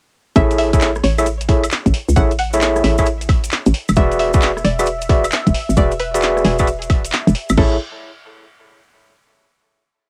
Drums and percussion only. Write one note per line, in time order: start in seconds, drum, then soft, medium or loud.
0.36 kick loud
0.36 closed hi-hat medium
0.36 maracas medium
0.51 closed hi-hat soft
0.51 maracas soft
0.58 open hi-hat loud
0.73 kick loud
0.73 closed hi-hat medium
0.73 maracas medium
0.81 clap loud
0.81 maracas medium
0.95 cross-stick medium
0.95 maracas soft
1.04 cross-stick soft
1.04 open hi-hat loud
1.18 high woodblock medium
1.18 maracas medium
1.26 closed hi-hat medium
1.26 maracas medium
1.41 closed hi-hat medium
1.41 maracas soft
1.49 kick loud
1.49 cross-stick soft
1.49 open hi-hat loud
1.64 closed hi-hat medium
1.64 high woodblock medium
1.64 maracas medium
1.71 clap loud
1.71 maracas medium
1.86 kick medium
1.86 closed hi-hat medium
1.86 maracas soft
1.94 open hi-hat loud
2.09 maracas medium
2.16 kick loud
2.16 closed hi-hat medium
2.16 maracas medium
2.31 closed hi-hat soft
2.31 maracas soft
2.39 open hi-hat loud
2.53 closed hi-hat medium
2.53 maracas medium
2.61 clap loud
2.61 maracas medium
2.76 cross-stick medium
2.76 maracas soft
2.84 open hi-hat loud
2.98 kick medium
2.98 high woodblock medium
2.98 maracas medium
3.06 closed hi-hat medium
3.06 maracas medium
3.21 closed hi-hat medium
3.21 maracas soft
3.29 kick loud
3.29 open hi-hat loud
3.29 high woodblock medium
3.44 closed hi-hat medium
3.44 maracas medium
3.52 clap loud
3.52 maracas medium
3.66 closed hi-hat medium
3.66 maracas soft
3.74 open hi-hat loud
3.88 closed hi-hat soft
3.88 high woodblock medium
3.88 maracas medium
3.96 kick loud
3.96 closed hi-hat medium
3.96 maracas medium
4.11 closed hi-hat soft
4.11 maracas soft
4.19 open hi-hat loud
4.33 kick loud
4.33 closed hi-hat medium
4.33 maracas medium
4.42 clap loud
4.42 maracas medium
4.57 cross-stick medium
4.57 maracas soft
4.65 cross-stick soft
4.65 open hi-hat loud
4.79 high woodblock medium
4.79 maracas medium
4.86 closed hi-hat medium
4.86 maracas medium
5.02 closed hi-hat medium
5.02 maracas soft
5.09 kick loud
5.09 cross-stick soft
5.09 open hi-hat loud
5.24 closed hi-hat medium
5.24 high woodblock medium
5.24 maracas medium
5.32 clap loud
5.32 maracas medium
5.47 kick medium
5.47 closed hi-hat medium
5.47 maracas soft
5.55 open hi-hat loud
5.70 maracas medium
5.77 kick loud
5.77 closed hi-hat medium
5.77 maracas medium
5.91 closed hi-hat soft
5.91 maracas soft
6.00 open hi-hat loud
6.14 closed hi-hat medium
6.14 maracas medium
6.22 clap loud
6.22 maracas medium
6.37 cross-stick medium
6.37 maracas soft
6.45 open hi-hat loud
6.59 kick medium
6.59 high woodblock medium
6.59 maracas medium
6.67 closed hi-hat medium
6.67 maracas medium
6.82 closed hi-hat medium
6.82 maracas soft
6.90 kick loud
6.90 open hi-hat loud
6.90 high woodblock medium
7.05 closed hi-hat medium
7.05 maracas medium
7.12 clap loud
7.12 maracas medium
7.27 closed hi-hat medium
7.27 maracas soft
7.35 open hi-hat loud
7.49 closed hi-hat soft
7.49 high woodblock medium
7.49 maracas medium
7.57 kick loud
7.57 crash medium